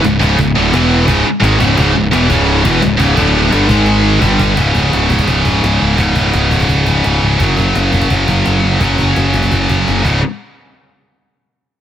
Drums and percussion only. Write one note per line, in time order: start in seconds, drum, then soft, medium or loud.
0.04 cajon slap loud
0.22 cajon bass loud
0.39 cajon bass medium
0.74 cajon slap loud
1.08 cajon bass loud
1.44 cajon slap loud
1.60 cajon bass loud
1.78 cajon bass loud
2.13 cajon slap loud
2.30 cajon bass loud
2.65 cajon bass loud
2.82 cajon slap loud
3.00 cajon bass loud
3.17 cajon bass loud
3.52 cajon slap loud
3.69 cajon bass loud
3.86 cajon slap medium
4.22 cajon bass loud
4.40 cajon bass loud
4.57 cajon bass loud
4.75 cajon bass medium
4.93 cajon slap loud
5.10 cajon bass medium
5.19 cajon bass medium
5.28 cajon bass loud
5.45 cajon bass medium
5.64 cajon slap loud
5.98 cajon bass loud
6.16 cajon bass medium
6.34 cajon slap loud
6.51 cajon bass medium
6.60 cajon bass medium
6.69 cajon bass medium
6.87 cajon bass medium
7.04 cajon slap loud
7.40 cajon bass loud
7.57 cajon bass medium
7.75 cajon slap loud
7.93 cajon bass medium
8.02 cajon bass medium
8.10 cajon bass medium
8.28 cajon bass medium
8.46 cajon slap loud
8.81 cajon bass loud
8.98 cajon bass medium
9.16 cajon slap loud
9.34 cajon bass medium
9.43 cajon bass medium
9.52 cajon bass medium
9.69 cajon bass medium
9.87 cajon slap soft
9.87 cajon slap medium
10.05 cajon bass medium